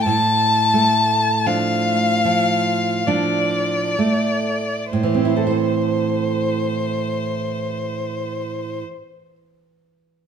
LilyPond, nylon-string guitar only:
\new Staff \with { instrumentName = "Nylon-string guitar" } { \time 3/4 \key a \minor \tempo 4 = 33 a,8 a8 <f d'>8 f8 <f d'>8 a8 | <a, e c' e' a' c''>2. | }